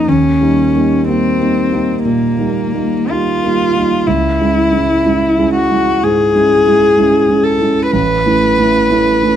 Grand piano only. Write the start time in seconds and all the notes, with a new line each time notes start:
0.08 D#2
0.41 G3 A#3 D#4
0.75 G3 A#3 D#4
1.09 G3 A#3 D#4
1.40 G3 A#3 D#4
1.72 G3 A#3 D#4
2.05 A#2
2.38 G3 A#3 D#4
2.74 G3 A#3 D#4
3.09 G3 A#3 D#4
3.43 G3 A#3 D#4
3.76 G3 A#3 D#4
4.08 C#2
4.40 G#3 C#4 E4
4.72 G#3 C#4
5.05 G#3 C#4 E4
5.39 G#3 C#4 E4
5.72 G#3 C#4 E4
6.04 G#2
6.35 G#3 C#4 E4
6.67 G#3 C#4 E4
6.98 G#3 C#4 E4
7.29 G#3 C#4 E4
7.61 G#3 C#4 E4
7.93 A1
8.26 A3 C#4 E4
8.58 A3 C#4 E4
8.91 A3 C#4 E4
9.23 A3 C#4 E4